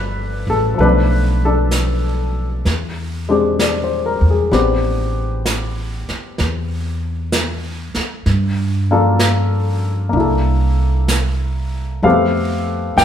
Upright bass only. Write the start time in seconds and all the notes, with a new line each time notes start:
Already playing: G1
0.47 A1
0.79 B1
2.65 E2
4.21 E2
4.51 A1
6.09 muted upright bass stroke
6.39 E2
7.95 muted upright bass stroke
8.26 G2
10.13 C2
12.03 F2
12.97 F#2